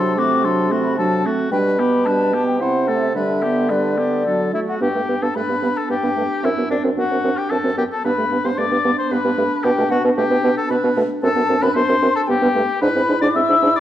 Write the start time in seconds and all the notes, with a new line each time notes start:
Already playing: C3 F#3 D4 A4 C6
0.17 A3 C4 F#4 D6
0.45 F#3 D4 A4 C6
0.71 A3 C4 F#4
0.85 B5
0.98 F#3 D4 A4 A5
1.25 A3 C4 F#4
1.52 B2 G3 D4 B4 G5
1.78 B3 G4 B5
2.05 G3 D4 B4 A5
2.33 B3 G4
2.47 G5
2.60 C3 C4 E4 C5 F#5
2.88 A3 C4 A4
3.02 E5
3.15 D3 G3 D4 B4 E5
3.43 B3 G4
3.70 G3 D4 B4 D5
3.98 B3 G4
4.26 F#3 D4 A4
4.53 A3 E4 F#4 E5
4.68 F#4 F#5
4.81 G2 B3 D4 G4 G5
4.95 G2 A3
5.09 G2 B3
5.22 G2 B3 A4 A5
5.35 G2 A3 B4 B5
5.49 G2 B3
5.63 G2 B3
5.77 A4 A5
5.90 G2 B3 G4 G5
6.03 G2 B3
6.16 G2 A3
6.43 F#2 C4 E4 E5
6.57 F#2 B3
6.70 F#2 C4 D4 D5
6.84 F#2 C4
6.97 F#2 B3 F#4 F#5
7.11 F#2 C4
7.24 F#2 C4
7.37 G4 G5
7.50 F#2 C4 A4 A5
7.64 F#2 C4
7.78 F#2 B3 G4 G5
7.91 A4 A5
8.04 G2 B3 D4 B4 B5
8.18 G2 A3
8.31 G2 B3
8.45 G2 B3 C5 C6
8.58 G2 A3 D5 D6
8.71 G2 B3
8.85 G2 B3
8.98 C5 C6
9.11 G2 B3 B4 B5
9.25 G2 B3
9.38 G2 A3
9.64 B2 B3 G4 G5
9.78 B2 A3
9.90 B2 B3 F#4 F#5
10.04 B2 B3
10.17 B2 A3 G4 G5
10.30 B2 B3
10.44 B2 B3
10.57 A4 A5
10.69 B2 B3 B4 B5
10.84 B2 B3
10.97 B2 A3
11.22 F#2 C4 D4 A4 A5
11.36 F#2 B3
11.49 F#2 C4
11.62 F#2 C4 B4 B5
11.76 F#2 B3 C5 C6
11.89 F#2 C4
12.02 F#2 C4
12.15 A4 A5
12.28 G2 B3 G4 G5
12.42 G2 B3
12.55 G2 A3
12.82 G#2 D4 E4 B4 B5
12.96 G#2 C4
13.09 G#2 D4
13.22 G#2 D4 D5 D6
13.35 G#2 C4 E5 E6
13.49 G#2 D4
13.63 G#2 D4
13.76 D5